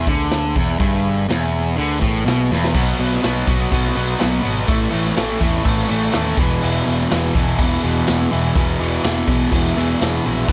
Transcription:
Already playing: G#4 B4 E5
0.07 D2 D3, kick
0.30 G#4 B4 E5, snare, open hi-hat
0.55 E1 E2, kick
0.78 G1 G2 G#4 B4 E5, kick, open hi-hat
1.28 E1 E2 G#4 B4 E5, snare, open hi-hat
1.76 D2 D3 G#4 B4 F#5, open hi-hat
2.01 A1 A2, kick
2.25 B1 B2 G#4 B4 E5, snare, open hi-hat
2.51 E1 E2, snare
2.64 snare
2.73 B1 B2 F#3 B3 F#4 B4 D#5, kick, crash
2.98 B1 B2 F#3 B3 F#4 B4 D#5, crash
3.13 snare
3.23 B1 B2 F#3 B3 F#4 B4 D#5, snare, crash
3.47 B1 B2 F#3 B3, kick, crash
3.71 B1 B2 F#3 B3 F#4 B4 D#5, kick, crash
3.86 snare
3.96 B1 B2 F#3 B3, crash
4.19 B1 B2 F#3 B3 F#4 B4 D#5, snare, crash
4.43 G#1 B2 F#3 B3, crash
4.67 A1 A2 E3 A3 A4 C#5 E5, kick, crash
4.90 A1 A2 E3 A3 A4 C#5 E5, crash
5.06 snare
5.16 A1 A2 E3 A3 A4 C#5 E5, snare, crash
5.40 E2 A2 E3 A3, kick, crash
5.64 A1 A2 E3 A3 A4 C#5 E5, kick, crash
5.78 snare
5.88 A1 A2 E3 A3, crash
6.12 D#2 A2 E3 A3 A4 C#5 E5, snare, crash
6.37 E1 E2 B2 E3 G#4 B4 E5, kick, crash
6.61 E1 E2 B2 E3, crash
6.85 E1 E2 B2 E3 G#4 B4 E5, crash
7.00 snare
7.10 E1 E2 B2 E3 G#4 B4 E5, snare, crash
7.35 E1 E2 B2 E3, kick, crash
7.58 E1 E2 B2 E3 G#4 B4 E5, kick, crash
7.73 snare
7.83 E1 E2 B2 E3, crash
8.07 E1 E2 B2 E3 G#4 B4 E5, snare, crash
8.31 E1 E2 B2 E3, crash
8.54 E1 E2 B2 E3 G#4 B4 E5, kick, crash
8.80 E1 E2 B2 E3 G#4 B4 E5, crash
9.03 E1 E2 B2 E3 G#4 B4 E5, snare, crash
9.27 B1 E2 B2 E3, kick, crash
9.50 E1 E2 B2 E3 G#4 B4 E5, kick, crash
9.65 snare
9.76 E1 E2 B2 E3, crash
9.99 E1 E2 B2 E3 G#4 B4 E5, snare, crash
10.25 A#1 E2 B2 E3, crash
10.47 B1 B2 F#3 F#4 B4 D#5, kick, crash

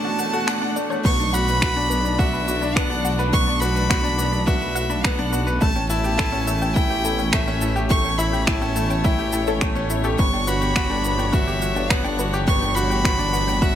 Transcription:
Already playing: D2 B2 E3 A3 C#4 D4 F#4 C#5 A5
0.05 F#4 F#5
0.19 A3 F#5, shaker
0.33 F#4 A4, shaker
0.47 D4 F#5 A5, finger snap, shaker
0.61 D4 F#5
0.76 A3 D5, shaker
0.90 A3 C#5, shaker
1.04 B1 B3 B4 C#6, kick, crash, shaker
1.19 D4 B5, shaker
1.33 F#4 F#5 B5, shaker
1.47 B4 B5, shaker
1.61 F#4 D6, finger snap, kick, shaker
1.76 D4 B5, shaker
1.90 B3 B4, shaker
2.04 D4 B5, shaker
2.19 F#4 E5 F#5, kick, shaker
2.33 B4 B5, shaker
2.47 F#4 D6, shaker
2.62 D4 B5, shaker
2.76 B3 B4 F#5, finger snap, kick, shaker
2.90 D4 B5, shaker
3.04 F#4 F#5, shaker
3.19 B4 B5, shaker
3.32 B3 C#6 D6, kick, shaker
3.47 D4 B5, shaker
3.60 F#4 B4 B5, shaker
3.75 B4 B5, shaker
3.90 F#4 F#5, finger snap, kick, shaker
4.04 D4 B5, shaker
4.18 B3 D6, shaker
4.32 D4 B5, shaker
4.46 F#4 B4 E5, kick, shaker
4.61 B4 B5, shaker
4.75 F#4 F#5, shaker
4.90 D4 B5, shaker
5.03 B3 F#5 D6, finger snap, kick, shaker
5.18 D4 B5, shaker
5.33 F#4 B4, shaker
5.47 B4 B5, shaker
5.61 A1 B2 A3 E5 A5, kick, shaker
5.76 C#4 G5, shaker
5.89 E4 C#5 A5, shaker
6.04 G4 G5, shaker
6.18 E4 A4, finger snap, kick, shaker
6.32 C#4 G5, shaker
6.47 A3 E5, shaker
6.62 C#4 G5, shaker
6.74 E4 G5 A5, kick, shaker
6.90 G4 G5, shaker
7.05 E4 A4, shaker
7.19 C#4 G5, shaker
7.32 A3 E5, finger snap, kick, shaker
7.47 C#4 G5, shaker
7.61 E4 A5, shaker
7.76 G4 G5, shaker
7.89 A3 A4 C#6, kick, shaker
8.04 C#4 G5, shaker
8.18 E4 E5 B5, shaker
8.33 G4 G5, shaker
8.46 E4 A5, finger snap, kick, shaker
8.62 C#4 G5, shaker
8.76 A3 A4, shaker
8.90 C#4 G5, shaker
9.04 E4 E5 G5, kick, shaker
9.19 G4 G5, shaker
9.32 E4 A5, shaker
9.47 C#4 A4, shaker
9.61 A3 C#5, finger snap, kick, shaker
9.75 C#4 C#5, shaker
9.90 E4 E5, shaker
10.04 G4 A4, shaker
10.18 G1 B3 B5 C#6, kick, shaker
10.33 D4 G5, shaker
10.47 E3 F#4 B4 B5, shaker
10.62 A3 G4 D6, shaker
10.75 F#4 F#5, finger snap, kick, shaker
10.90 D4 G5, shaker
11.04 B3 B5, shaker
11.18 D4 G5, shaker
11.32 F#4 B4 E5, kick, shaker
11.47 G4 D6, shaker
11.62 F#4 F#5, shaker
11.76 D4 G5, shaker
11.90 B3 F#5 B5, finger snap, kick, shaker
12.04 D4 G5, shaker
12.19 F#4 B4, shaker
12.33 G4 D6, shaker
12.47 B3 F#5 C#6, kick, shaker
12.61 D4 G5, shaker
12.76 F#4 B5, shaker
12.90 G4 G5, shaker
13.05 F#4 B4, finger snap, kick, shaker
13.19 D4 D6, shaker
13.33 B3 F#5, shaker
13.47 D4 G5, shaker
13.62 F#4 E5 B5, kick, shaker

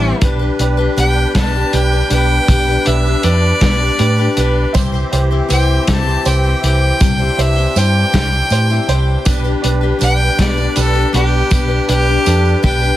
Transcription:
Already playing: A1 E3 G3 C4 D4 E4 G4 C5
0.21 B1 G3 B3 D4 G4 B4, kick, closed hi-hat
0.39 D4 G4 B4
0.59 B1 D4 G4 B4, closed hi-hat
0.77 D4 G4 B4
0.96 B1 B3 D4 G4 B4 G5, closed hi-hat
1.35 B1 B3 D4 G4 B4 A5, kick, snare, closed hi-hat
1.54 D4 G4 B4
1.72 B1 D4 G4 B4 G5, closed hi-hat
1.92 D4 G4 B4
2.10 B1 B3 D4 G4 B4 G5, closed hi-hat
2.14 B4
2.48 B1 B3 D4 G4 B4, kick, closed hi-hat
2.68 D4 G4 B4
2.85 B1 D4 G4 B4 E5, closed hi-hat
3.06 D4 G4 B4
3.23 F2 B3 D4 G4 B4 D5, closed hi-hat
3.61 B1 B3 D4 G4 B4, kick, snare, closed hi-hat
3.81 D4 G4 B4
3.99 A2 D4 G4 B4, closed hi-hat
4.18 D4 G4 B4
4.36 B1 B3 D4 G4 B4, closed hi-hat
4.73 C2 C3 E3 G3 C4 E4 G4 C5, kick, closed hi-hat, tambourine
4.92 C4 E4 G4 C5, tambourine
5.11 C2 E4 G4 C5, closed hi-hat
5.31 C4 E4 G4 C5
5.48 C2 C4 E4 G4 B4 C5 G5, closed hi-hat, tambourine
5.87 C2 C3 G3 C4 E4 G4 C5 A5, kick, snare, closed hi-hat, tambourine
6.06 C4 E4 G4 C5
6.24 C2 E4 G4 C5 G5, closed hi-hat, tambourine
6.43 E4 G4 C5, tambourine
6.48 C4
6.62 C2 C4 E4 G4 B4 G5, closed hi-hat
6.66 C5
7.00 C2 C3 G3 C4 D4 E4 G4 C5, kick, closed hi-hat, tambourine
7.19 C4 E4 G4 C5, tambourine
7.37 C2 E4 G4 C5 E5, closed hi-hat
7.56 C4 E4 G4 C5
7.75 G2 C4 E4 G4 C5 G5, closed hi-hat, tambourine
8.13 C2 C3 G3 C4 E4 G4 C5, kick, snare, closed hi-hat, tambourine
8.32 C4 E4 G4 C5, tambourine
8.50 A2 E4 G4 C5, closed hi-hat, tambourine
8.70 C4 E4 G4 C5, tambourine
8.87 C2 C4 E4 G4 C5, closed hi-hat
9.25 B1 G3 B3 D4 G4 B4, kick, closed hi-hat, tambourine
9.44 D4 G4 B4, tambourine
9.62 B1 D4 G4 B4, closed hi-hat
9.81 D4 G4 B4
9.99 B1 B3 D4 G4 B4, closed hi-hat, tambourine
10.03 G5
10.38 B1 B3 D4 G4 B4 D5, kick, snare, closed hi-hat, tambourine
10.57 D4 G4 B4, tambourine
10.75 B1 D4 G4 A4 B4, closed hi-hat, tambourine
10.94 D4 G4 B4, tambourine
11.13 B1 B3 D4 G4 B4, closed hi-hat
11.50 B1 B3 D4 G4 B4, kick, closed hi-hat, tambourine
11.68 D4 G4 B4
11.88 B1 D4 G4 B4, closed hi-hat
12.07 D4 G4 B4
12.25 F2 B3 D4 G4 A4 B4, closed hi-hat, tambourine
12.45 tambourine
12.63 B1 B3 D4 G4 B4 G5, kick
12.81 D4 G4 B4, tambourine

